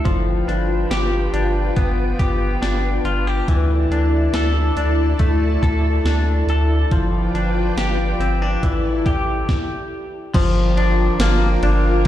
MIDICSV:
0, 0, Header, 1, 5, 480
1, 0, Start_track
1, 0, Tempo, 857143
1, 30, Time_signature, 4, 2, 24, 8
1, 6762, End_track
2, 0, Start_track
2, 0, Title_t, "String machine"
2, 0, Program_c, 0, 50
2, 0, Note_on_c, 0, 74, 64
2, 21, Note_on_c, 0, 71, 64
2, 24, Note_on_c, 0, 79, 74
2, 26, Note_on_c, 0, 65, 74
2, 1925, Note_off_c, 0, 74, 0
2, 1926, Note_off_c, 0, 71, 0
2, 1928, Note_off_c, 0, 65, 0
2, 1928, Note_off_c, 0, 79, 0
2, 1954, Note_on_c, 0, 69, 68
2, 1955, Note_on_c, 0, 81, 87
2, 1957, Note_on_c, 0, 64, 73
2, 1957, Note_on_c, 0, 74, 67
2, 3853, Note_off_c, 0, 69, 0
2, 3853, Note_off_c, 0, 81, 0
2, 3854, Note_off_c, 0, 64, 0
2, 3854, Note_off_c, 0, 74, 0
2, 3875, Note_on_c, 0, 65, 73
2, 3879, Note_on_c, 0, 71, 73
2, 3879, Note_on_c, 0, 74, 73
2, 3881, Note_on_c, 0, 79, 79
2, 4822, Note_off_c, 0, 74, 0
2, 4823, Note_off_c, 0, 65, 0
2, 4825, Note_off_c, 0, 71, 0
2, 4826, Note_on_c, 0, 64, 62
2, 4829, Note_on_c, 0, 74, 61
2, 4830, Note_on_c, 0, 69, 59
2, 5301, Note_off_c, 0, 79, 0
2, 5303, Note_off_c, 0, 64, 0
2, 5304, Note_off_c, 0, 74, 0
2, 5305, Note_off_c, 0, 69, 0
2, 5784, Note_on_c, 0, 79, 96
2, 5787, Note_on_c, 0, 65, 79
2, 5787, Note_on_c, 0, 70, 74
2, 5791, Note_on_c, 0, 74, 79
2, 6762, Note_off_c, 0, 65, 0
2, 6762, Note_off_c, 0, 70, 0
2, 6762, Note_off_c, 0, 74, 0
2, 6762, Note_off_c, 0, 79, 0
2, 6762, End_track
3, 0, Start_track
3, 0, Title_t, "Clean electric guitar"
3, 0, Program_c, 1, 27
3, 0, Note_on_c, 1, 57, 59
3, 0, Note_on_c, 1, 62, 51
3, 0, Note_on_c, 1, 69, 52
3, 28, Note_on_c, 1, 53, 74
3, 78, Note_off_c, 1, 57, 0
3, 78, Note_off_c, 1, 69, 0
3, 267, Note_off_c, 1, 62, 0
3, 269, Note_on_c, 1, 62, 53
3, 508, Note_on_c, 1, 67, 55
3, 746, Note_off_c, 1, 62, 0
3, 748, Note_on_c, 1, 62, 49
3, 989, Note_on_c, 1, 59, 59
3, 1221, Note_off_c, 1, 67, 0
3, 1228, Note_on_c, 1, 67, 56
3, 1465, Note_off_c, 1, 62, 0
3, 1467, Note_on_c, 1, 62, 52
3, 1706, Note_off_c, 1, 67, 0
3, 1708, Note_on_c, 1, 65, 55
3, 1833, Note_off_c, 1, 65, 0
3, 1833, Note_on_c, 1, 67, 53
3, 1949, Note_off_c, 1, 53, 0
3, 1951, Note_on_c, 1, 52, 71
3, 1997, Note_off_c, 1, 59, 0
3, 1999, Note_off_c, 1, 67, 0
3, 2192, Note_off_c, 1, 62, 0
3, 2194, Note_on_c, 1, 62, 52
3, 2433, Note_on_c, 1, 69, 57
3, 2670, Note_off_c, 1, 62, 0
3, 2672, Note_on_c, 1, 62, 53
3, 2909, Note_on_c, 1, 57, 60
3, 3144, Note_off_c, 1, 69, 0
3, 3151, Note_on_c, 1, 69, 60
3, 3395, Note_off_c, 1, 62, 0
3, 3397, Note_on_c, 1, 62, 52
3, 3630, Note_off_c, 1, 69, 0
3, 3638, Note_on_c, 1, 69, 56
3, 3871, Note_off_c, 1, 52, 0
3, 3875, Note_on_c, 1, 53, 68
3, 3917, Note_off_c, 1, 57, 0
3, 3922, Note_off_c, 1, 69, 0
3, 4113, Note_off_c, 1, 62, 0
3, 4116, Note_on_c, 1, 62, 57
3, 4355, Note_on_c, 1, 67, 54
3, 4592, Note_off_c, 1, 62, 0
3, 4594, Note_on_c, 1, 60, 49
3, 4715, Note_off_c, 1, 60, 0
3, 4715, Note_on_c, 1, 62, 46
3, 4832, Note_off_c, 1, 53, 0
3, 4834, Note_on_c, 1, 52, 70
3, 4880, Note_off_c, 1, 62, 0
3, 5073, Note_off_c, 1, 67, 0
3, 5075, Note_on_c, 1, 67, 59
3, 5360, Note_off_c, 1, 52, 0
3, 5640, Note_off_c, 1, 67, 0
3, 5794, Note_on_c, 1, 53, 90
3, 6032, Note_on_c, 1, 62, 65
3, 6274, Note_on_c, 1, 58, 58
3, 6512, Note_off_c, 1, 62, 0
3, 6514, Note_on_c, 1, 62, 59
3, 6749, Note_off_c, 1, 58, 0
3, 6762, Note_off_c, 1, 53, 0
3, 6762, Note_off_c, 1, 62, 0
3, 6762, End_track
4, 0, Start_track
4, 0, Title_t, "Analog synth bass"
4, 0, Program_c, 2, 38
4, 30, Note_on_c, 2, 31, 98
4, 241, Note_off_c, 2, 31, 0
4, 267, Note_on_c, 2, 31, 84
4, 479, Note_off_c, 2, 31, 0
4, 505, Note_on_c, 2, 31, 89
4, 718, Note_off_c, 2, 31, 0
4, 746, Note_on_c, 2, 31, 94
4, 959, Note_off_c, 2, 31, 0
4, 988, Note_on_c, 2, 31, 90
4, 1200, Note_off_c, 2, 31, 0
4, 1229, Note_on_c, 2, 31, 83
4, 1440, Note_off_c, 2, 31, 0
4, 1465, Note_on_c, 2, 31, 89
4, 1678, Note_off_c, 2, 31, 0
4, 1703, Note_on_c, 2, 31, 86
4, 1917, Note_off_c, 2, 31, 0
4, 1949, Note_on_c, 2, 38, 97
4, 2160, Note_off_c, 2, 38, 0
4, 2184, Note_on_c, 2, 38, 93
4, 2397, Note_off_c, 2, 38, 0
4, 2426, Note_on_c, 2, 38, 90
4, 2639, Note_off_c, 2, 38, 0
4, 2668, Note_on_c, 2, 38, 90
4, 2880, Note_off_c, 2, 38, 0
4, 2909, Note_on_c, 2, 38, 91
4, 3120, Note_off_c, 2, 38, 0
4, 3148, Note_on_c, 2, 38, 99
4, 3360, Note_off_c, 2, 38, 0
4, 3386, Note_on_c, 2, 38, 93
4, 3599, Note_off_c, 2, 38, 0
4, 3622, Note_on_c, 2, 38, 110
4, 3837, Note_off_c, 2, 38, 0
4, 3871, Note_on_c, 2, 31, 98
4, 4082, Note_off_c, 2, 31, 0
4, 4109, Note_on_c, 2, 31, 88
4, 4320, Note_off_c, 2, 31, 0
4, 4346, Note_on_c, 2, 31, 92
4, 4559, Note_off_c, 2, 31, 0
4, 4588, Note_on_c, 2, 31, 90
4, 4800, Note_off_c, 2, 31, 0
4, 4830, Note_on_c, 2, 33, 93
4, 5041, Note_off_c, 2, 33, 0
4, 5072, Note_on_c, 2, 33, 82
4, 5282, Note_off_c, 2, 33, 0
4, 5792, Note_on_c, 2, 31, 108
4, 6214, Note_off_c, 2, 31, 0
4, 6266, Note_on_c, 2, 31, 102
4, 6479, Note_off_c, 2, 31, 0
4, 6509, Note_on_c, 2, 31, 105
4, 6762, Note_off_c, 2, 31, 0
4, 6762, End_track
5, 0, Start_track
5, 0, Title_t, "Drums"
5, 30, Note_on_c, 9, 36, 96
5, 30, Note_on_c, 9, 42, 56
5, 86, Note_off_c, 9, 36, 0
5, 86, Note_off_c, 9, 42, 0
5, 273, Note_on_c, 9, 42, 40
5, 329, Note_off_c, 9, 42, 0
5, 510, Note_on_c, 9, 42, 72
5, 511, Note_on_c, 9, 38, 91
5, 566, Note_off_c, 9, 42, 0
5, 567, Note_off_c, 9, 38, 0
5, 749, Note_on_c, 9, 42, 48
5, 805, Note_off_c, 9, 42, 0
5, 988, Note_on_c, 9, 42, 63
5, 989, Note_on_c, 9, 36, 74
5, 1044, Note_off_c, 9, 42, 0
5, 1045, Note_off_c, 9, 36, 0
5, 1229, Note_on_c, 9, 36, 80
5, 1229, Note_on_c, 9, 42, 51
5, 1285, Note_off_c, 9, 36, 0
5, 1285, Note_off_c, 9, 42, 0
5, 1470, Note_on_c, 9, 38, 76
5, 1471, Note_on_c, 9, 42, 66
5, 1526, Note_off_c, 9, 38, 0
5, 1527, Note_off_c, 9, 42, 0
5, 1708, Note_on_c, 9, 42, 40
5, 1764, Note_off_c, 9, 42, 0
5, 1950, Note_on_c, 9, 36, 91
5, 1950, Note_on_c, 9, 42, 58
5, 2006, Note_off_c, 9, 36, 0
5, 2006, Note_off_c, 9, 42, 0
5, 2193, Note_on_c, 9, 42, 40
5, 2249, Note_off_c, 9, 42, 0
5, 2428, Note_on_c, 9, 42, 64
5, 2429, Note_on_c, 9, 38, 94
5, 2484, Note_off_c, 9, 42, 0
5, 2485, Note_off_c, 9, 38, 0
5, 2669, Note_on_c, 9, 42, 48
5, 2725, Note_off_c, 9, 42, 0
5, 2908, Note_on_c, 9, 42, 64
5, 2910, Note_on_c, 9, 36, 81
5, 2964, Note_off_c, 9, 42, 0
5, 2966, Note_off_c, 9, 36, 0
5, 3152, Note_on_c, 9, 36, 81
5, 3157, Note_on_c, 9, 42, 50
5, 3208, Note_off_c, 9, 36, 0
5, 3213, Note_off_c, 9, 42, 0
5, 3391, Note_on_c, 9, 38, 82
5, 3392, Note_on_c, 9, 42, 67
5, 3447, Note_off_c, 9, 38, 0
5, 3448, Note_off_c, 9, 42, 0
5, 3632, Note_on_c, 9, 42, 38
5, 3688, Note_off_c, 9, 42, 0
5, 3872, Note_on_c, 9, 36, 94
5, 3872, Note_on_c, 9, 42, 55
5, 3928, Note_off_c, 9, 36, 0
5, 3928, Note_off_c, 9, 42, 0
5, 4116, Note_on_c, 9, 42, 42
5, 4172, Note_off_c, 9, 42, 0
5, 4354, Note_on_c, 9, 42, 67
5, 4355, Note_on_c, 9, 38, 96
5, 4410, Note_off_c, 9, 42, 0
5, 4411, Note_off_c, 9, 38, 0
5, 4595, Note_on_c, 9, 42, 50
5, 4651, Note_off_c, 9, 42, 0
5, 4833, Note_on_c, 9, 36, 85
5, 4833, Note_on_c, 9, 42, 62
5, 4889, Note_off_c, 9, 36, 0
5, 4889, Note_off_c, 9, 42, 0
5, 5073, Note_on_c, 9, 36, 82
5, 5075, Note_on_c, 9, 42, 50
5, 5129, Note_off_c, 9, 36, 0
5, 5131, Note_off_c, 9, 42, 0
5, 5313, Note_on_c, 9, 36, 88
5, 5314, Note_on_c, 9, 38, 75
5, 5369, Note_off_c, 9, 36, 0
5, 5370, Note_off_c, 9, 38, 0
5, 5792, Note_on_c, 9, 36, 105
5, 5793, Note_on_c, 9, 51, 55
5, 5794, Note_on_c, 9, 49, 103
5, 5848, Note_off_c, 9, 36, 0
5, 5849, Note_off_c, 9, 51, 0
5, 5850, Note_off_c, 9, 49, 0
5, 6034, Note_on_c, 9, 51, 39
5, 6090, Note_off_c, 9, 51, 0
5, 6270, Note_on_c, 9, 51, 70
5, 6270, Note_on_c, 9, 54, 67
5, 6271, Note_on_c, 9, 38, 127
5, 6326, Note_off_c, 9, 51, 0
5, 6326, Note_off_c, 9, 54, 0
5, 6327, Note_off_c, 9, 38, 0
5, 6511, Note_on_c, 9, 51, 47
5, 6567, Note_off_c, 9, 51, 0
5, 6762, End_track
0, 0, End_of_file